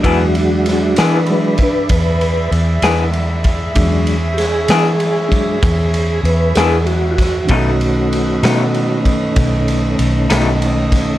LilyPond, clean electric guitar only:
\new Staff \with { instrumentName = "Clean electric guitar" } { \time 12/8 \key e \major \tempo 4. = 64 <e b d' gis'>8 r4 <e b d' gis'>8 r2 r8 <e b d' gis'>8 r4 | r4. <e b d' gis'>8 r2 r8 <e b d' gis'>8 r4 | <b, fis a dis'>8 r4 <b, fis a dis'>8 r2 r8 <b, fis a dis'>8 r4 | }